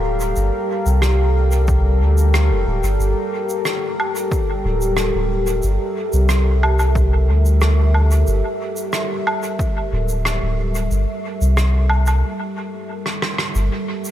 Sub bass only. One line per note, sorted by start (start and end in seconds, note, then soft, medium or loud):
0.00 0.33 D1 medium
0.36 0.51 G1 loud
0.86 2.02 C2 medium
2.01 2.52 D2 medium
2.50 2.65 F1 loud
2.67 2.81 D1 medium
2.83 2.98 G1 medium
2.99 3.14 G1 loud
4.64 5.11 D1 loud
5.14 5.60 D1 medium
5.63 5.78 G1 medium
6.13 7.30 C2 medium
7.28 8.24 D2 medium
8.27 8.42 G1 loud
9.92 10.39 D1 loud
10.42 10.88 D1 medium
10.91 11.06 G1 loud
11.41 12.23 C2 medium
13.55 13.70 G1 loud